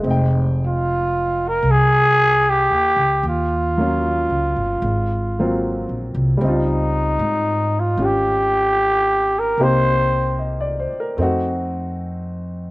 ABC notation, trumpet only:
X:1
M:4/4
L:1/8
Q:"Swing" 1/4=76
K:Fm
V:1 name="Trumpet"
z F2 B A2 G2 | F6- F z | E3 F G3 B | c2 z6 |]